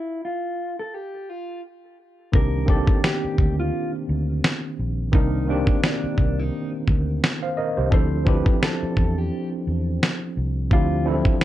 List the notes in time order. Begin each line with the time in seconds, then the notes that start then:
Already playing: E4
0.25 F4
0.79 A4
0.94 G4
1.29 F4
2.32 C2 D#3 A#3 C4 D4 G4 A#4, kick
2.66 D#3 A#3 C4 D4 G4, kick
2.70 A4
2.87 kick
3.04 G4, snare
3.24 muted fingered electric bass stroke
3.38 D2, kick
3.60 F4
4.09 D2
4.44 snare
4.79 A#1
5.12 C2 D#3 A#3 C4 D4 D#4 A#4, kick
5.48 D#3 A#3 C4 D4 G4
5.67 kick
5.84 D4, snare
6.04 muted fingered electric bass stroke
6.18 C2, kick
6.39 D#4
6.88 D2, kick
7.24 snare
7.43 C5 F5
7.57 A#4 D#5
7.77 C2 G4 C5
7.90 D2 F3 C4 D4 E4 A4, kick
7.94 C5
8.25 F3 C4 D4 E4 G4 B4, kick
8.46 kick
8.62 A4, snare
8.83 muted fingered electric bass stroke
8.97 E2, kick
9.18 G4
9.67 E2
10.03 snare
10.37 C2
10.70 D2 F3 C4 D4 E4 F4 G4, kick
11.04 E3 C4 D4 E4 A4
11.11 F3
11.25 kick